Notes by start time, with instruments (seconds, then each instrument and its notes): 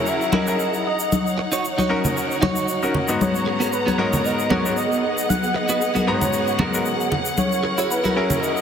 Already playing: grand piano F#3 C#4 E4 G#4 A#4, string section E4 G#4 F#5 A#5
0.06 analog synth lead E5, muted clean electric guitar stroke, shaker
0.21 shaker
0.32 grand piano F#3 C#4 E4 G#4 A#4, clean electric guitar E4 F#4 G#4 A#4, analog synth lead D#5, high conga
0.47 grand piano F#3 C#4 E4 G#4 A#4, shaker
0.59 shaker
0.74 shaker
0.87 analog synth lead D#5
0.99 shaker
1.11 string section D#4 C#5, high conga, shaker
1.27 shaker
1.38 muted clean electric guitar stroke
1.52 clean electric guitar D#4 F#4 C#5, shaker
1.65 shaker
1.78 clean electric guitar D#4 F#4 C#5, high conga, shaker
1.89 grand piano C#4 D#4 F#4 A#4
2.05 low conga, shaker
2.16 muted clean electric guitar stroke, shaker
2.31 shaker
2.42 clean electric guitar D#4 F#4 C#5, high conga, low conga
2.56 shaker
2.68 shaker
2.83 grand piano C#4 D#4 F#4 A#4, shaker
2.94 low conga
3.08 grand piano G#2 B3 D#4 F#4, shaker
3.21 string section B3 G#4 F#5 A#5, analog synth lead C#5, high conga, shaker
3.35 shaker
3.46 muted clean electric guitar stroke
3.60 clean electric guitar B3 F#4 G#4 A#4, shaker
3.72 analog synth lead B4, shaker
3.86 clean electric guitar B3 F#4 G#4 C#5, high conga, shaker
3.98 grand piano G#2 B3 D#4 F#4 A#4, analog synth lead C#5
4.13 low conga, shaker
4.24 analog synth lead D#5, muted clean electric guitar stroke, shaker
4.39 shaker
4.50 grand piano G#2 B3 D#4 F#4 A#4, clean electric guitar B3 F#4 G#4 A#4, analog synth lead C#5, high conga
4.65 grand piano G#2 B3 D#4 F#4 A#4, shaker
4.77 analog synth lead D#5, shaker
4.92 shaker
5.18 shaker
5.29 analog synth lead F#5, high conga, shaker
5.43 shaker
5.54 analog synth lead D#5, muted clean electric guitar stroke
5.69 clean electric guitar B3 F#4 G#4 B4, shaker
5.81 shaker
5.95 clean electric guitar B3 F#4 G#4 A#4, high conga, shaker
6.07 grand piano G#2 B3 D#4 F#4 A#5, analog synth lead C#5
6.21 low conga, shaker
6.33 muted clean electric guitar stroke, shaker
6.47 shaker
6.59 grand piano G#2 B3 D#4 F#4 A#4, clean electric guitar B3 F#4 G#4 A#4, high conga, low conga
6.74 grand piano G#2 B3 D#4 F#4 A#4, shaker
6.85 shaker
7.00 shaker
7.12 low conga
7.25 shaker
7.37 string section E4 A#4, analog synth lead C#5, high conga, shaker
7.52 shaker
7.63 muted clean electric guitar stroke
7.78 clean electric guitar E4 F#4 G#4 C#5, shaker
7.90 analog synth lead B4, shaker
8.04 clean electric guitar E4 F#4 G#4 A#4, high conga, shaker
8.16 grand piano F#3 C#4 E4 G#4 A#4, analog synth lead C#5
8.30 low conga, shaker
8.41 analog synth lead D#5, muted clean electric guitar stroke, shaker
8.57 shaker